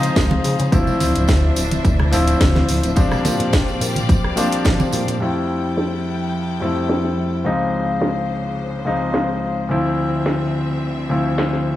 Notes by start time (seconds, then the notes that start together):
Already playing: C#3 F3 G#3 C4 D#4 G#4 C5 F5
0.03 closed hi-hat, tambourine
0.16 C#2, kick, snare, closed hi-hat, tambourine
0.31 high conga
0.44 C#3, open hi-hat, tambourine
0.59 C#3, closed hi-hat, tambourine
0.72 D2 F3 A3 C4 D4 E4 C5 E5, kick, closed hi-hat, tambourine
0.87 tambourine, low conga
1.00 D1, open hi-hat, tambourine, high conga
1.15 D1, closed hi-hat, tambourine
1.28 D2, kick, snare, closed hi-hat, tambourine
1.56 D1, open hi-hat, tambourine
1.71 closed hi-hat, tambourine, high conga
1.85 D2, kick, closed hi-hat, tambourine
1.99 cross-stick, low conga
2.12 D1 F3 A3 C4 E4, open hi-hat, tambourine
2.28 closed hi-hat, tambourine
2.41 D2, kick, snare, closed hi-hat, tambourine
2.56 snare, high conga
2.69 D1, open hi-hat, tambourine
2.83 D1, closed hi-hat, tambourine
2.96 A#1 F3 G3 A#3 C4 D4 G4 D5, kick, closed hi-hat, tambourine
3.11 cross-stick, tambourine, low conga
3.25 A#2, open hi-hat, tambourine, high conga
3.40 A#2, closed hi-hat, tambourine
3.53 A#1, kick, snare, closed hi-hat, tambourine
3.68 tambourine
3.81 A#2, open hi-hat, tambourine
3.96 closed hi-hat, tambourine, high conga
4.09 A#1, kick, closed hi-hat, tambourine
4.24 cross-stick
4.36 A#2 F3 G3 C4 D4, open hi-hat, tambourine
4.52 A#1, closed hi-hat, tambourine
4.65 A#1, kick, snare, closed hi-hat, tambourine
4.80 tambourine, high conga
4.92 A#2, open hi-hat, tambourine
5.08 A#2, closed hi-hat, tambourine
5.20 F2 F3 G3 A3 C4 E4 A4 G5
5.77 snare
6.60 F2 G3 A3 C4 E4
6.89 snare
7.04 snare
7.44 C#2 C#3 F3 G#3 C4 D#4 C5
8.02 snare
8.85 C#2 F3 G#3 C4 D#4
9.14 snare
9.69 D2 D3 F3 A3 C4 E4 E5
10.26 snare
11.09 D2 F3 A3 C4 E4
11.38 snare
11.53 snare